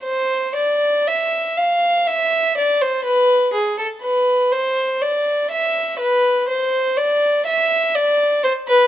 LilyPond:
\new Staff \with { instrumentName = "Violin" } { \time 3/4 \key d \dorian \tempo 4 = 61 c''8 d''8 e''8 f''8 e''8 d''16 c''16 | b'8 gis'16 a'16 b'8 c''8 d''8 e''8 | b'8 c''8 d''8 e''8 d''8 c''16 b'16 | }